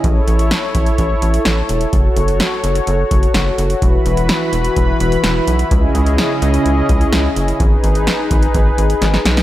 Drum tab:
HH |x-xxx-xxx-xxx-xx|x-xxx-xxx-xxx-xx|x-xxx-xxx-xxx-xx|x-xxx-xxx-xxx-xx|
SD |----o-------o---|----o-------o---|----o-------o---|----o-------o---|
BD |o-----o-o-------|o---------o-----|o-------o-------|o---------o-----|

HH |x-xxx-xxx-xxx-xx|
SD |----o-------oooo|
BD |o-----o-o-------|